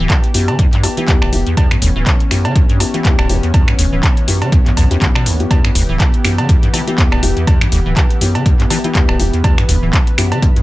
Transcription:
Already playing: E3 B3 G4
0.10 kick, clap, closed hi-hat, cowbell
0.24 closed hi-hat
0.34 F#2 B3 E4 G4, open hi-hat
0.48 D3, closed hi-hat, cowbell
0.59 E2, kick, closed hi-hat
0.73 G2, clap, closed hi-hat
0.83 E2 B3 E4 G4, open hi-hat, cowbell
0.97 E3 B3 E4 G4, closed hi-hat
1.08 D2, kick, clap, closed hi-hat
1.22 D1 E1, finger snap, cowbell
1.33 E1 F#2 B3 E4 G4, open hi-hat
1.46 E2, closed hi-hat
1.57 E2 C#4, kick, closed hi-hat, cowbell
1.71 G2, finger snap, closed hi-hat
1.82 E1 D2, open hi-hat
1.96 D1 E3
2.06 kick, clap, closed hi-hat, cowbell
2.20 closed hi-hat
2.31 F#2 B3 E4 G4, finger snap, open hi-hat
2.45 D3, closed hi-hat, cowbell
2.56 E2, kick, closed hi-hat
2.69 G2, closed hi-hat
2.80 E2 B3 E4 G4, open hi-hat, cowbell
2.94 E3 B3 E4 G4, closed hi-hat
3.05 D2, kick, clap, closed hi-hat
3.19 D1 E1, finger snap, cowbell
3.29 E1 F#2 B3 E4 G4, open hi-hat
3.43 E2, closed hi-hat
3.54 E2, kick, closed hi-hat, cowbell
3.68 G2, finger snap, closed hi-hat
3.79 E1 D2, open hi-hat
3.92 D1 E3
4.03 kick, clap, closed hi-hat, cowbell
4.17 closed hi-hat
4.28 F#2 B3 E4 G4, open hi-hat
4.42 D3, closed hi-hat, cowbell
4.52 E2, kick, closed hi-hat
4.66 G2, clap, closed hi-hat
4.77 B1 E2, open hi-hat, cowbell
4.91 E2 B3 E4 G4, closed hi-hat
5.02 D2, kick, clap, closed hi-hat
5.15 B2, finger snap, cowbell
5.26 D2, open hi-hat
5.40 G2 B3 E4 G4, closed hi-hat
5.51 E2 G4, kick, closed hi-hat, cowbell
5.65 G2, finger snap, closed hi-hat
5.75 E1 D2, open hi-hat
5.89 D1 E3
6.00 kick, clap, closed hi-hat, cowbell
6.14 closed hi-hat
6.24 F#2 B3 E4 G4, finger snap, open hi-hat
6.38 D3, closed hi-hat, cowbell
6.49 E2, kick, closed hi-hat
6.63 G2, closed hi-hat
6.74 E3 B3 E4 G4, open hi-hat, cowbell
6.87 E3 B3 E4 G4, closed hi-hat
6.98 D2, kick, clap, closed hi-hat
7.12 D1 E1, finger snap, cowbell
7.23 E1 F#2 B3 E4 G4, open hi-hat
7.37 E2, closed hi-hat
7.47 kick, closed hi-hat, cowbell
7.61 G2, finger snap, closed hi-hat
7.72 E1 D2, open hi-hat
7.86 D1 E3
7.97 kick, clap, closed hi-hat, cowbell
8.11 closed hi-hat
8.21 F#2 B3 E4 G4, open hi-hat
8.35 D3, closed hi-hat, cowbell
8.46 E2, kick, closed hi-hat
8.60 G2, clap, closed hi-hat
8.70 E3 B3 E4 G4, open hi-hat, cowbell
8.84 E3 B3 E4 G4, closed hi-hat
8.95 D2, kick, clap, closed hi-hat
9.09 D1 E1, finger snap, cowbell
9.20 E1 F#2 B3 E4 G4, open hi-hat
9.33 E2, closed hi-hat
9.44 E2 B4, kick, closed hi-hat, cowbell
9.58 G2, finger snap, closed hi-hat
9.69 E1 D2, open hi-hat
9.83 D1 E3
9.93 kick, clap, closed hi-hat, cowbell
10.07 closed hi-hat
10.18 F#2 B3 E4 G4, finger snap, open hi-hat
10.32 D3, closed hi-hat, cowbell
10.43 E2, kick, closed hi-hat
10.56 G2, closed hi-hat

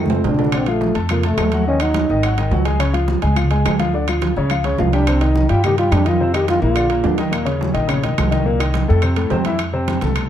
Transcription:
Already playing: F2 A3
0.06 low conga
0.10 C4 C5, low timbale
0.24 A#1 D4, low conga, low timbale
0.34 D3, low conga
0.38 D4, low timbale
0.44 low conga
0.52 D3 C4 D4 D5, high conga, high timbale, claves
0.66 F3 A3 F4 F5, high conga, high timbale
0.81 high conga, low timbale
0.94 F2 A3 A4 A5, high conga, high timbale
1.09 F3 A#3 F4 F5, high conga, low conga, high timbale, claves
1.23 A3 A4 A5, high conga, low conga, high timbale
1.37 D#2, high conga, high timbale, low timbale, claves
1.52 F#3 F#4 F#5, high conga, high timbale
1.67 D#3 C#4 D#4 D#5, high conga
1.80 F#3 D#4 F#4 F#5, high conga, high timbale, claves
1.94 high conga, high timbale, low timbale
2.09 G#1 D#3 D#4 D#5, high conga
2.23 F#3 F#4 F#5, high timbale, claves
2.38 D#3 D#4 D#5, high conga, high timbale
2.51 C#2 F#3 F#4 F#5, high conga, low timbale
2.65 G#3 G#4 G#5, high conga, high timbale
2.79 C#3 C#4 C#5, high conga, high timbale, claves
2.93 F3 F4 F5, high conga, high timbale
3.08 high conga, low timbale
3.22 C#2 G#3 G#4 G#5, high conga, high timbale
3.36 F3 F4 F5, high conga, low conga, high timbale, claves
3.51 G#3 G#4 G#5, high conga, low conga, high timbale
3.65 D2, high conga, high timbale, low timbale, claves
3.79 F3 F4 F5, high conga, high timbale
3.94 D3 D4 D5, high conga
4.08 F3 F4 F5, high timbale, claves
4.22 high conga, high timbale, low timbale
4.36 C#2 C#3 C#4 C#5, high conga
4.50 F3 F4 F5, high conga, high timbale, claves
4.64 C#3 C#4 C#5, high conga, high timbale
4.78 C2 F3 F4 F5, high conga, low timbale
4.92 G3 D4 G4 G5, high conga, high timbale
5.07 C3 C4 C5, high timbale, claves
5.21 D#3 D#4 D#5, high conga, high timbale
5.35 high conga, low timbale
5.49 G2 G3 F4 G4 G5, high timbale
5.64 D#3 D#4 G4 D#5, high conga, low conga, high timbale, claves
5.78 G3 F4 G4 G5, high conga, high timbale
5.91 F2 D4, high conga, high timbale, low timbale, claves
6.05 D#3 D#4 F4 D#5, high conga, high timbale
6.20 C3 C4 C5, high conga
6.34 D#3 D#4 G4 D#5, high conga, high timbale, claves
6.48 F4, high conga, high timbale, low timbale
6.62 A#1 A#2 A#3 F4 A#4, high conga
6.75 D3 D4 D5, high conga, high timbale, claves
6.89 A#2 A#3 A#4, high conga, high timbale
7.03 D#2 D3 D4 D5, high conga, low timbale
7.18 D#3 D#4 D#5, high conga, high timbale
7.31 A#2 A#3 A#4, high conga, high timbale, claves
7.45 C#3 C#4 C#5, high conga, high timbale
7.61 high conga, low timbale
7.74 A#1 D#3 D#4 D#5, high conga, high timbale
7.87 C#3 C#4 C#5, high conga, low conga, high timbale, claves
8.03 D#3 D#4 D#5, high conga, low conga, high timbale
8.18 C2, high conga, high timbale, low timbale, claves
8.31 D#3 D#4 D#5, high conga, high timbale
8.45 A#2 A#3 A#4, high conga
8.60 D#3 D#4 D#5, high timbale, claves
8.74 high conga, high timbale, low timbale
8.88 F2 A2 A3 A4, high conga
9.02 C3 C4 C5, high conga, high timbale, claves
9.16 A2 A3 A4, high conga, high timbale
9.30 F2 C3 C4 C5, high conga, low timbale
9.45 E3 E4 E5, high conga, high timbale
9.59 high conga, high timbale, claves
9.73 C3 C4 C5, high conga
9.88 high conga, high timbale, low timbale
10.01 C2 A3 A4 A5, high conga, high timbale
10.16 high conga, low conga, high timbale, claves

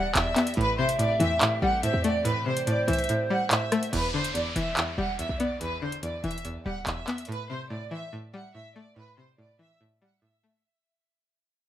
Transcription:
Already playing: D1 E2 D3 E3 G3 B3 D4 G4 D5 F#5
0.15 E1 E2 E5, clap, closed hi-hat
0.36 B3, clap, closed hi-hat
0.47 closed hi-hat
0.54 A1 A2 E3 A3 C4 G4 B4, closed hi-hat
0.61 closed hi-hat
0.78 C3 C5 E5
0.89 closed hi-hat
0.98 A2 D5, closed hi-hat
1.20 E2 E3 E5, closed hi-hat
1.41 A2, clap, closed hi-hat
1.62 A1 G3 F#5
1.83 A2 C5 E5, closed hi-hat
1.94 E2
2.03 A3 D5, closed hi-hat
2.25 A2 B4, closed hi-hat
2.36 C3
2.46 C3 C5
2.57 closed hi-hat
2.67 A2 D5, closed hi-hat
2.88 C2 E3 E5, closed hi-hat
2.93 closed hi-hat
2.99 closed hi-hat
3.04 closed hi-hat
3.09 A2, closed hi-hat
3.30 G3 F#5
3.51 A2 E5, clap, closed hi-hat
3.72 A3, cross-stick, closed hi-hat
3.83 closed hi-hat
3.93 E1 E2 B4, closed hi-hat, crash, downlifter
4.14 D3 C5
4.24 closed hi-hat
4.34 E2 D5, closed hi-hat
4.56 E1 E3 E5, closed hi-hat
4.77 E2, clap, closed hi-hat
4.98 E1 G3 F#5
5.19 E2 E5, closed hi-hat
5.29 B1
5.39 B3 D5, closed hi-hat
5.61 E2 B4, closed hi-hat
5.71 G1
5.82 D3 C5
5.92 closed hi-hat
5.98 B1
6.03 E2 D5, closed hi-hat
6.24 E1 E3 E5, closed hi-hat
6.31 closed hi-hat
6.38 closed hi-hat
6.45 E2, closed hi-hat
6.55 E2
6.65 D1 G3 F#5
6.87 E1 E2 E5, clap, closed hi-hat
7.08 B3, clap, closed hi-hat
7.18 closed hi-hat
7.25 A2 B4, closed hi-hat
7.32 closed hi-hat
7.49 C3 C5
7.70 A2 D5
7.91 E3 E5
8.13 A2
8.33 G3 F#5
8.54 A2 E5
8.75 A3 D5
8.96 A2 B4
9.17 C3 C5
9.38 A2 D5
9.59 E3 E5
9.81 A2
10.01 G3 F#5
10.22 A2 E5
10.43 A3

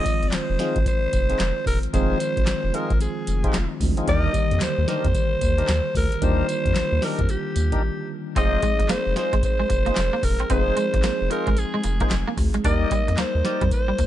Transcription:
Already playing: D#3 F3 G#3 C4 F4 D#5
0.06 kick, closed hi-hat, tambourine
0.23 G#1, closed hi-hat
0.28 D5, clap
0.32 F1 C5, snare, clap, closed hi-hat, tambourine
0.50 F1
0.59 C4 D#4 F4 G#4, snare, closed hi-hat
0.76 G#1, kick, closed hi-hat
0.86 C5, kick, closed hi-hat, tambourine
1.13 F1, kick, closed hi-hat, tambourine
1.29 C4 D#4 F4 G#4, closed hi-hat
1.39 F1, snare, clap, closed hi-hat, tambourine
1.66 E1 A#4, kick, open hi-hat, tambourine
1.83 closed hi-hat
1.93 F1 D#3 F3 G#3 C4 D#4 F4 G#4 C5, kick, closed hi-hat, tambourine
2.20 closed hi-hat, tambourine
2.37 G#1, kick, closed hi-hat
2.46 F1, snare, clap, closed hi-hat, tambourine
2.64 F1
2.73 C4 D#4 F4 G#4 A#4, closed hi-hat
2.90 G#1, kick, closed hi-hat
3.01 G#4, closed hi-hat, tambourine
3.27 F1, closed hi-hat, tambourine
3.44 C4 D#4 F4 G#4, kick, closed hi-hat
3.53 F1, snare, clap, closed hi-hat, tambourine
3.80 D2 D#3 F3 G#3 C4 D4, kick, open hi-hat, tambourine
3.97 C4 D#4 F4 G#4, closed hi-hat
4.07 D#2 D3 D#3 G3 A#3 D4 D#4 G4 A#4 D#5, kick, closed hi-hat, tambourine
4.34 kick, closed hi-hat, tambourine
4.51 F2, closed hi-hat
4.60 D#2 C5, snare, clap, closed hi-hat, tambourine
4.78 D#2
4.88 D4 D#4 G4 A#4 C5, snare, closed hi-hat
5.04 F2, kick, closed hi-hat
5.15 kick, closed hi-hat, tambourine
5.41 D#2, kick, closed hi-hat, tambourine
5.58 D4 D#4 G4 A#4, closed hi-hat
5.68 D#2, snare, clap, closed hi-hat, tambourine
5.95 D2 A#4, kick, open hi-hat, tambourine
6.12 closed hi-hat
6.21 D#2 D#3 G3 A#3 D4 D#4 F4 G4 A#4 C5, kick, closed hi-hat, tambourine
6.49 closed hi-hat, tambourine
6.66 F2, kick, closed hi-hat
6.75 D#2, snare, clap, closed hi-hat, tambourine
6.92 D#2
7.02 D4 D#4 G4 A#4, snare, open hi-hat
7.19 F2, kick, closed hi-hat
7.29 G4, closed hi-hat, tambourine
7.56 D#2, closed hi-hat, tambourine
7.72 D4 D#4 G4 A#4, kick, closed hi-hat
8.36 F1 F3 G#3 C4 D#4 F4 G#4 C5 D#5, kick, closed hi-hat, tambourine
8.62 G#3, kick, closed hi-hat, tambourine
8.79 G#1, muted clean electric guitar stroke, closed hi-hat
8.89 F1 A#3 C5, snare, clap, closed hi-hat, tambourine
9.07 F1
9.16 D#4 F4 G#4 C5, muted clean electric guitar stroke, snare, closed hi-hat
9.33 G#1 G#3, kick, closed hi-hat
9.43 C5, kick, closed hi-hat, tambourine
9.60 G#3
9.69 F1, muted clean electric guitar stroke, kick, closed hi-hat, tambourine
9.86 A#3 D#4 F4 G#4 C5, closed hi-hat
9.96 F1, snare, clap, closed hi-hat, tambourine
10.13 A#3
10.23 E1 A#4, muted clean electric guitar stroke, kick, open hi-hat, tambourine
10.39 C4, closed hi-hat
10.50 F1 F3 G#3 C4 D#4 F4 G#4 C5, kick, closed hi-hat, tambourine
10.77 G#3, closed hi-hat, tambourine
10.94 G#1, muted clean electric guitar stroke, kick, closed hi-hat
11.03 F1 A#3, snare, clap, closed hi-hat, tambourine
11.21 F1
11.30 D#4 F4 G#4 A#4 C5, muted clean electric guitar stroke, closed hi-hat
11.47 G#1 G#3, kick, closed hi-hat
11.57 G#4, closed hi-hat, tambourine
11.74 G#3
11.83 F1, muted clean electric guitar stroke, closed hi-hat, tambourine
12.00 A#3 D#4 F4 G#4 C5, kick, closed hi-hat
12.10 F1, snare, clap, closed hi-hat, tambourine
12.28 A#3
12.37 D2, muted clean electric guitar stroke, kick, open hi-hat, tambourine
12.54 G#3, closed hi-hat
12.64 D#2 G3 A#3 D4 D#4 G4 A#4 D5 D#5, kick, closed hi-hat, tambourine
12.91 G3, kick, closed hi-hat, tambourine
13.08 F2, muted clean electric guitar stroke, closed hi-hat
13.17 D#2 A#3 C5, snare, clap, closed hi-hat, tambourine
13.35 D#2
13.45 D#4 G4 A#4 D5, muted clean electric guitar stroke, snare, closed hi-hat
13.61 F2 G3, kick, closed hi-hat
13.71 C5, kick, closed hi-hat, tambourine
13.88 G3
13.98 D#2, muted clean electric guitar stroke, kick, closed hi-hat, tambourine

